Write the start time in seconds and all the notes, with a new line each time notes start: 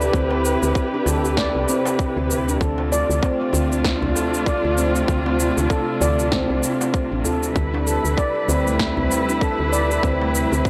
Already playing: C3 E4 G4 B4
0.01 shaker
0.13 D2 C4, kick, shaker
0.31 C4, darbuka tek
0.45 shaker
0.62 D2 C4, darbuka ka, shaker
0.75 kick, shaker
0.94 D4
1.06 D2 A4, darbuka tek, darbuka dum, shaker
1.25 shaker
1.37 D5, kick, snare, shaker
1.55 C2
1.69 C4, shaker
1.85 C4, darbuka tek, shaker
1.99 kick, shaker
2.17 D2 C4
2.30 darbuka dum, shaker
2.48 D4, shaker
2.61 D2 A3 D4 F4 A4, kick, shaker
2.78 darbuka tek
2.92 D5, shaker
3.09 D2, shaker
3.23 C4, kick, darbuka tek, shaker
3.41 C4
3.53 D2, darbuka tek, darbuka dum, shaker
3.72 C4, shaker
3.84 kick, snare, shaker
4.02 C2 D4, darbuka dum
4.16 A4, darbuka tek, shaker
4.34 shaker
4.46 D5, kick, shaker
4.64 D2, darbuka ka
4.78 C4, shaker
4.95 C4, shaker
5.08 D2, kick, shaker
5.26 C4, darbuka tek
5.40 shaker
5.57 D2 D4, darbuka ka, shaker
5.70 A4, kick, shaker
6.01 D2 D5, darbuka tek, darbuka dum, shaker
6.19 shaker
6.32 C4, kick, snare, shaker
6.49 C2 C4
6.63 shaker
6.81 C4, darbuka tek, shaker
6.94 kick, shaker
7.12 A1 D4
7.24 A4, darbuka dum, shaker
7.43 shaker
7.55 D2 G3 E4 B4, kick, shaker
7.74 D4, darbuka tek
7.87 A4, shaker
8.05 D2, shaker
8.17 D5, kick, darbuka tek, shaker
8.48 D2 C4, darbuka tek, darbuka dum, shaker
8.67 A3, shaker
8.79 kick, snare, shaker
8.97 C2 C4, darbuka dum
9.11 darbuka tek, shaker
9.29 D4, shaker
9.41 A4, kick, shaker
9.59 D2, darbuka ka
9.73 D5, shaker
9.91 shaker
10.03 D2 C4, kick, shaker
10.21 A3, darbuka tek
10.35 shaker
10.52 D2 C4, darbuka ka, shaker
10.65 kick, shaker